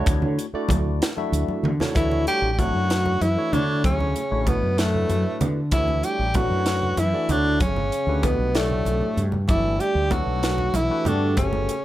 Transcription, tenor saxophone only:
1.96 E4
2.27 G4
2.51 G4
2.58 F#4
3.22 E4
3.53 D4
3.85 C#4
4.48 B3
4.78 A3
5.73 E4
6.04 G4
6.35 F#4
6.99 E4
7.31 D4
7.62 C#4
8.23 B3
8.56 A3
9.50 E4
9.81 G4
10.12 F#4
10.76 E4
11.07 D4
11.38 C#4

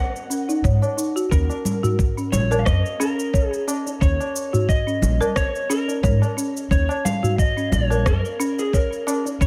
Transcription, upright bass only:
0.64 G#2
1.32 D#2
2.33 A#1
2.66 F#2
4.01 D#2
5.02 A#1
6.03 G#2
6.71 D#2
7.72 A#1
8.06 F#2
9.41 D#2

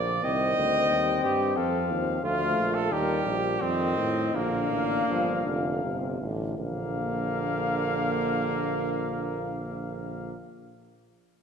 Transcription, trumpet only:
Already playing: D5
0.24 G5
1.57 F5
2.25 F5
2.93 A#4
3.62 D#5
4.35 F5
6.59 F5

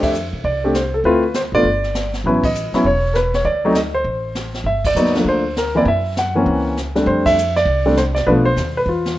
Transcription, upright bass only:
Already playing: F2
0.33 C3
0.44 C2
1.04 D2
1.52 A1
1.63 G1
2.24 A1
2.73 muted upright bass stroke
2.84 E1
3.44 D2
4.04 A1
4.64 G1
4.95 D2
5.25 D2
5.85 F#2
6.46 C#2
7.06 F2
7.65 C2
8.27 B1
8.56 D#2
8.86 E2

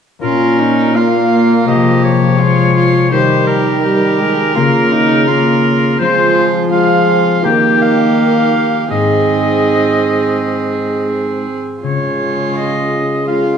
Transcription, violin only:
0.23 F4
0.59 D#4
0.96 F4
1.68 G4
2.39 F4
2.76 F4
3.12 G4
3.83 G4
4.56 F4
4.92 D#4
5.28 F4
6.00 F4
6.72 F4
7.44 G4
8.90 G#4
11.82 F4
13.28 F4

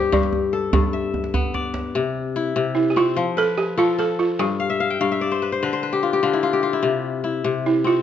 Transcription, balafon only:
Already playing: C5
0.13 D5
2.75 E4
2.90 G4
2.97 F4
3.38 A4
3.58 G4
3.79 F4
3.99 A4
4.19 F4
4.39 G4
7.66 E4
7.87 F4

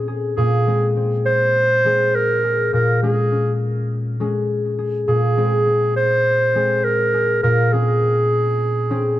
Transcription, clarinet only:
0.37 G#4
1.26 C5
2.15 A#4
2.74 A#4
3.03 G#4
5.08 G#4
5.96 C5
6.84 A#4
7.43 A#4
7.73 G#4

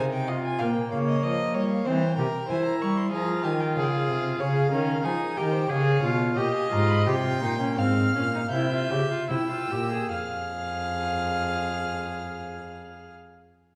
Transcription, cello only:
Already playing: C3
0.61 A#2
0.92 C#3
1.23 F3
1.55 G3
1.86 E3
2.18 C3
2.50 E3
2.81 G3
3.13 F3
3.44 D#3
3.76 C#3
4.08 C3
4.41 C#3
4.73 D#3
5.04 F3
5.38 D#3
5.70 C#3
6.03 B2
6.37 A#2
6.72 G#2
7.07 C3
7.42 A#2
7.78 G#2
8.15 A#2
8.51 C3
8.90 C#3
9.29 C3
9.70 A#2
10.13 F2

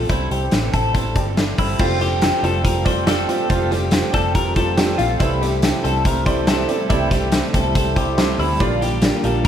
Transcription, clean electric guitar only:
0.10 E4
0.32 G4
0.74 A4
0.95 A4
1.17 G4
1.59 E4
1.80 F4
2.01 G4
2.44 A4
2.64 A#4
2.86 C5
3.07 A4
3.50 F4
3.71 G4
4.14 A4
4.35 A#4
4.56 A4
4.98 F4
5.20 E4
5.41 G4
5.84 A4
6.05 A#4
6.26 C5
6.47 A4
6.90 E4
7.11 G4
7.54 A4
7.76 A4
7.97 G4
8.39 E4
8.60 F4
8.81 G4
9.24 A4

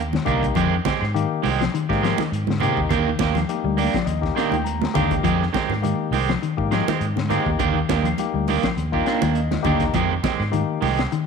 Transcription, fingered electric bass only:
Already playing: D#2
0.27 C2
0.56 F2
1.02 G#2
1.44 C2
1.90 G#2
2.32 G#2
2.77 D#2
2.90 D#2
3.20 D#2
3.64 D2
3.94 muted fingered electric bass stroke
4.07 D#2
4.51 D#2
4.96 D#2
5.25 F2
5.69 G#2
6.11 C2
6.58 G#2
7.01 G#2
7.46 D#2
7.60 D#2
7.89 D#2
8.34 D2
8.63 muted fingered electric bass stroke
8.77 D#2
9.22 D#2
9.65 D#2
9.95 F2
10.40 G#2
10.82 C2

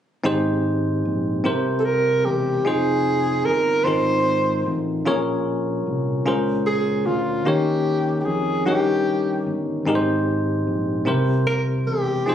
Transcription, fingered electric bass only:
0.25 G#1
1.05 A#1
1.45 C2
2.26 E1
2.66 F1
3.46 G1
3.86 G#1
4.66 A1
5.06 A#1
5.87 C2
6.26 C#2
7.06 D2
7.46 D#2
8.27 F2
8.66 G2
9.46 G1
9.86 G#1
10.67 A#1
11.07 C2
11.87 E1
12.27 F1

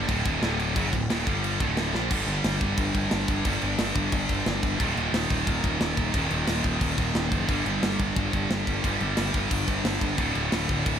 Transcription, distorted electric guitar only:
0.08 D2 A2 D3
0.25 D#2 A#2 D#3
0.42 D2 A2 D3
0.76 F#2 C#3 F#3
0.93 D2 A2
1.10 D#2 A#2 D#3
1.26 G2 D3 G3
1.60 D2 A2 D3
1.94 A#2 F3 A#3
2.10 G2 D3 G3
3.45 G2 D3 G3
4.78 D#2 A#2 D#3
6.13 D#2 A#2 D#3
7.47 G2 D3 G3
8.84 G2 D3 G3
10.17 D2 A2 D3

